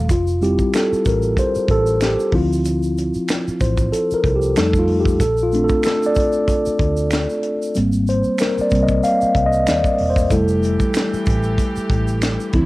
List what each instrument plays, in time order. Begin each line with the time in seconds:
Already playing: tine electric piano E3 G3 A3
0.09 fingered electric bass F1, tine electric piano F4, kick, closed hi-hat, shaker
0.27 shaker
0.41 tine electric piano G3 C4 E4 G4, closed hi-hat, shaker
0.58 kick, shaker
0.73 tine electric piano A4, finger snap, snare, closed hi-hat, shaker
0.92 muted fingered electric bass stroke, shaker
1.05 fingered electric bass A1, tine electric piano A#4, kick, closed hi-hat, shaker
1.22 shaker
1.37 tine electric piano C5, kick, closed hi-hat, shaker
1.55 muted fingered electric bass stroke, shaker
1.68 fingered electric bass A1, tine electric piano A4, kick, closed hi-hat
1.86 shaker
2.00 tine electric piano G4, finger snap, snare, closed hi-hat, shaker
2.19 shaker
2.32 fingered electric bass D2, tine electric piano F3 C4 E4 F4, kick, open hi-hat
2.53 shaker
2.65 closed hi-hat, shaker
2.83 shaker
2.98 closed hi-hat, shaker
3.14 muted fingered electric bass stroke, shaker
3.28 finger snap, snare, closed hi-hat, shaker
3.48 muted fingered electric bass stroke, shaker
3.60 fingered electric bass A1, tine electric piano C5, kick, closed hi-hat, shaker
3.77 kick, shaker
3.92 tine electric piano A4, closed hi-hat, shaker
4.11 tine electric piano A#4, muted fingered electric bass stroke, shaker
4.24 fingered electric bass C2, kick, closed hi-hat
4.36 tine electric piano G4
4.42 shaker
4.56 fingered electric bass F2, tine electric piano G3 A3 D#4 A4, finger snap, snare, closed hi-hat, shaker
4.73 kick, shaker
4.79 tine electric piano F4
4.87 open hi-hat
5.00 tine electric piano G4
5.05 kick, shaker
5.20 fingered electric bass A#1, tine electric piano A4, kick, closed hi-hat, shaker
5.37 shaker
5.43 tine electric piano F4
5.52 tine electric piano A3 C4 D4, closed hi-hat, shaker
5.64 tine electric piano A4
5.68 muted fingered electric bass stroke, kick, shaker
5.83 tine electric piano A4, finger snap, snare, closed hi-hat, shaker
6.03 tine electric piano D5, shaker
6.15 kick, shaker
6.20 closed hi-hat
6.33 shaker
6.48 kick, closed hi-hat, shaker
6.66 muted fingered electric bass stroke, shaker
6.79 fingered electric bass D2, kick, closed hi-hat
6.97 shaker
7.11 finger snap, snare, closed hi-hat, shaker
7.30 shaker
7.43 closed hi-hat
7.62 shaker
7.75 fingered electric bass G#1, tine electric piano G3 A#3 C4, closed hi-hat, shaker
7.92 shaker
8.07 tine electric piano C5, closed hi-hat, shaker
8.24 muted fingered electric bass stroke, shaker
8.38 tine electric piano A#4, finger snap, snare, closed hi-hat, shaker
8.58 tine electric piano D5, muted fingered electric bass stroke, shaker
8.70 fingered electric bass C2, tine electric piano G3 A#3 C4, kick, shaker
8.75 closed hi-hat
8.83 tine electric piano D#5
8.88 kick, shaker
9.03 tine electric piano F5, closed hi-hat, shaker
9.21 muted fingered electric bass stroke, shaker
9.35 fingered electric bass C2, kick, closed hi-hat
9.46 tine electric piano D#5
9.52 shaker
9.66 fingered electric bass D#2, tine electric piano D5, finger snap, snare, closed hi-hat, shaker
9.84 kick, shaker
9.98 fingered electric bass E1, open hi-hat
10.10 tine electric piano C5
10.16 kick, shaker
10.30 fingered electric bass F1, string section E3 A3 G4, tine electric piano G3 A3 E4 A4, kick, closed hi-hat, shaker
10.48 shaker
10.63 closed hi-hat, shaker
10.80 muted fingered electric bass stroke, kick, shaker
10.94 finger snap, snare, closed hi-hat, shaker
11.13 muted fingered electric bass stroke, shaker
11.26 fingered electric bass A1, kick, closed hi-hat, shaker
11.43 shaker
11.58 kick, closed hi-hat, shaker
11.76 muted fingered electric bass stroke, shaker
11.90 fingered electric bass A1, kick, closed hi-hat
12.07 shaker
12.21 finger snap, snare, closed hi-hat, shaker
12.40 shaker
12.53 fingered electric bass D2, string section C3 F3 E4, tine electric piano F3 C4 E4, kick, closed hi-hat